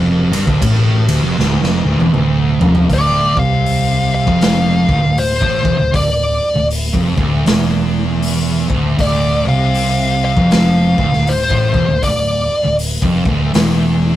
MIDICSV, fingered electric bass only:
0, 0, Header, 1, 2, 480
1, 0, Start_track
1, 0, Key_signature, -1, "minor"
1, 0, Tempo, 761421
1, 1821, Time_signature, 4, 2, 24, 8
1, 8926, End_track
2, 0, Start_track
2, 0, Title_t, "Fingered electric bass"
2, 0, Program_c, 0, 33
2, 0, Note_on_c, 0, 29, 95
2, 184, Note_off_c, 0, 29, 0
2, 198, Note_on_c, 0, 31, 100
2, 284, Note_off_c, 0, 31, 0
2, 298, Note_on_c, 0, 26, 99
2, 380, Note_off_c, 0, 26, 0
2, 390, Note_on_c, 0, 33, 99
2, 663, Note_off_c, 0, 33, 0
2, 681, Note_on_c, 0, 26, 88
2, 765, Note_off_c, 0, 26, 0
2, 778, Note_on_c, 0, 29, 94
2, 859, Note_off_c, 0, 29, 0
2, 869, Note_on_c, 0, 26, 91
2, 1004, Note_off_c, 0, 26, 0
2, 1019, Note_on_c, 0, 29, 95
2, 1153, Note_off_c, 0, 29, 0
2, 1160, Note_on_c, 0, 26, 94
2, 1244, Note_off_c, 0, 26, 0
2, 1255, Note_on_c, 0, 28, 94
2, 1337, Note_off_c, 0, 28, 0
2, 1350, Note_on_c, 0, 26, 96
2, 1623, Note_off_c, 0, 26, 0
2, 1640, Note_on_c, 0, 29, 96
2, 1809, Note_off_c, 0, 29, 0
2, 1825, Note_on_c, 0, 26, 96
2, 2100, Note_off_c, 0, 26, 0
2, 2125, Note_on_c, 0, 36, 91
2, 2667, Note_off_c, 0, 36, 0
2, 2692, Note_on_c, 0, 29, 92
2, 3055, Note_off_c, 0, 29, 0
2, 3079, Note_on_c, 0, 26, 91
2, 3163, Note_off_c, 0, 26, 0
2, 3171, Note_on_c, 0, 26, 80
2, 3394, Note_off_c, 0, 26, 0
2, 3415, Note_on_c, 0, 33, 101
2, 3551, Note_off_c, 0, 33, 0
2, 3561, Note_on_c, 0, 28, 88
2, 3645, Note_off_c, 0, 28, 0
2, 3650, Note_on_c, 0, 26, 86
2, 3735, Note_off_c, 0, 26, 0
2, 3744, Note_on_c, 0, 26, 80
2, 4020, Note_off_c, 0, 26, 0
2, 4131, Note_on_c, 0, 26, 84
2, 4354, Note_off_c, 0, 26, 0
2, 4373, Note_on_c, 0, 29, 95
2, 4511, Note_off_c, 0, 29, 0
2, 4526, Note_on_c, 0, 26, 83
2, 4692, Note_off_c, 0, 26, 0
2, 4708, Note_on_c, 0, 28, 88
2, 5458, Note_off_c, 0, 28, 0
2, 5482, Note_on_c, 0, 26, 93
2, 5650, Note_off_c, 0, 26, 0
2, 5665, Note_on_c, 0, 26, 93
2, 5941, Note_off_c, 0, 26, 0
2, 5963, Note_on_c, 0, 36, 98
2, 6507, Note_off_c, 0, 36, 0
2, 6533, Note_on_c, 0, 29, 94
2, 6896, Note_off_c, 0, 29, 0
2, 6922, Note_on_c, 0, 26, 91
2, 7005, Note_off_c, 0, 26, 0
2, 7020, Note_on_c, 0, 26, 86
2, 7238, Note_off_c, 0, 26, 0
2, 7251, Note_on_c, 0, 33, 97
2, 7389, Note_off_c, 0, 33, 0
2, 7400, Note_on_c, 0, 28, 98
2, 7484, Note_off_c, 0, 28, 0
2, 7489, Note_on_c, 0, 26, 78
2, 7574, Note_off_c, 0, 26, 0
2, 7582, Note_on_c, 0, 26, 80
2, 7859, Note_off_c, 0, 26, 0
2, 7969, Note_on_c, 0, 26, 81
2, 8192, Note_off_c, 0, 26, 0
2, 8209, Note_on_c, 0, 29, 94
2, 8347, Note_off_c, 0, 29, 0
2, 8356, Note_on_c, 0, 26, 92
2, 8526, Note_off_c, 0, 26, 0
2, 8534, Note_on_c, 0, 28, 91
2, 8926, Note_off_c, 0, 28, 0
2, 8926, End_track
0, 0, End_of_file